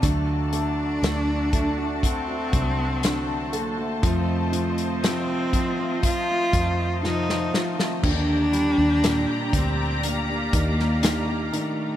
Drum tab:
CC |----------------|----------------|x---------------|
HH |x-x-x-x-x-x-x-x-|x-xxx-x-x-x-----|--x-x-x-x-x-x-x-|
SD |----o-------o---|----o-------oooo|----o------oo---|
BD |o-----o-o-o-----|o-----o-o-o-----|o-----o---o-----|